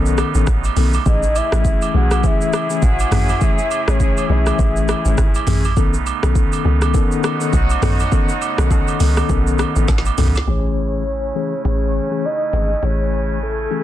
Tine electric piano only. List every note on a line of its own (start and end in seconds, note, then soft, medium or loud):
0.00 0.31 D#3 medium
0.00 0.31 B3 medium
0.00 0.31 C#4 medium
0.00 0.31 A4 loud
0.35 0.47 D#3 medium
0.35 0.47 B3 medium
0.35 0.47 C#4 medium
0.35 0.47 A4 medium
0.76 0.93 D#3 medium
0.76 0.93 B3 medium
0.76 0.94 C#4 medium
0.76 0.94 A4 medium
1.06 1.23 E3 medium
1.06 1.23 A3 medium
1.06 1.23 C#4 medium
1.06 1.23 G#4 loud
1.52 1.91 E3 medium
1.52 1.91 A3 medium
1.52 1.91 C#4 medium
1.52 1.92 G#4 medium
1.94 2.22 E3 medium
1.94 2.22 A3 medium
1.94 2.22 C#4 medium
1.94 2.22 G#4 medium
2.23 2.66 E3 medium
2.23 2.66 A3 medium
2.23 2.66 C#4 medium
2.23 2.66 G#4 loud
2.70 2.82 E3 medium
2.70 2.82 A3 medium
2.70 2.82 C#4 medium
2.70 2.83 G#4 medium
3.12 3.29 E3 medium
3.12 3.29 A3 medium
3.12 3.29 C#4 medium
3.12 3.29 G#4 medium
3.41 3.58 E3 medium
3.41 3.58 A3 medium
3.41 3.58 C#4 medium
3.41 3.58 G#4 loud
3.88 4.27 E3 medium
3.88 4.27 A3 medium
3.88 4.27 C#4 medium
3.88 4.27 G#4 medium
4.29 4.57 E3 medium
4.29 4.57 A3 medium
4.29 4.57 C#4 medium
4.29 4.57 G#4 medium
4.59 5.01 E3 medium
4.59 5.01 A3 medium
4.59 5.02 C#4 medium
4.59 5.02 G#4 loud
5.05 5.18 E3 medium
5.05 5.18 A3 medium
5.05 5.18 C#4 medium
5.05 5.18 G#4 medium
5.47 5.64 E3 medium
5.47 5.64 A3 medium
5.47 5.64 C#4 medium
5.47 5.64 G#4 medium
5.77 5.93 D#3 medium
5.77 5.94 B3 medium
5.77 5.94 C#4 medium
5.77 5.94 A4 loud
6.23 6.62 D#3 medium
6.23 6.62 B3 medium
6.23 6.62 C#4 medium
6.23 6.62 A4 medium
6.65 6.92 D#3 medium
6.65 6.92 B3 medium
6.65 6.93 C#4 medium
6.65 6.93 A4 medium
6.94 7.37 D#3 loud
6.94 7.37 B3 medium
6.94 7.37 C#4 medium
6.94 7.37 A4 loud
7.41 7.53 D#3 medium
7.41 7.53 B3 medium
7.41 7.53 C#4 medium
7.41 7.53 A4 medium
7.82 7.99 D#3 medium
7.82 7.99 B3 medium
7.82 7.99 C#4 medium
7.82 7.99 A4 medium
8.12 8.29 D#3 medium
8.12 8.29 B3 medium
8.12 8.29 C#4 medium
8.12 8.29 A4 loud
8.58 8.97 D#3 medium
8.58 8.97 B3 medium
8.58 8.97 C#4 medium
8.58 8.97 A4 medium
9.00 9.28 D#3 medium
9.00 9.28 B3 medium
9.00 9.28 C#4 medium
9.00 9.28 A4 medium
9.29 9.72 D#3 medium
9.29 9.72 B3 medium
9.29 9.72 C#4 medium
9.29 9.72 A4 loud
9.76 9.88 D#3 medium
9.76 9.88 B3 medium
9.76 9.88 C#4 medium
9.76 9.88 A4 medium
10.18 10.35 D#3 medium
10.18 10.35 B3 medium
10.18 10.35 C#4 medium
10.18 10.35 A4 medium
10.47 11.02 E3 medium
10.47 11.02 A3 medium
10.47 11.02 C#4 medium
10.47 11.02 G#4 medium
11.35 11.52 E3 medium
11.35 11.52 A3 medium
11.35 11.52 C#4 medium
11.35 11.53 G#4 medium
11.65 12.07 E3 medium
11.65 12.07 A3 medium
11.65 12.07 C#4 medium
11.65 12.07 G#4 medium
12.11 12.23 E3 medium
12.11 12.24 A3 medium
12.11 12.24 C#4 medium
12.11 12.24 G#4 medium
12.53 12.70 E3 medium
12.53 12.70 A3 medium
12.53 12.70 C#4 medium
12.53 12.70 G#4 medium
12.82 13.37 E3 medium
12.82 13.38 A3 medium
12.82 13.38 C#4 medium
12.82 13.38 G#4 medium
13.71 13.84 E3 medium
13.71 13.84 A3 medium
13.71 13.84 C#4 medium
13.71 13.84 G#4 medium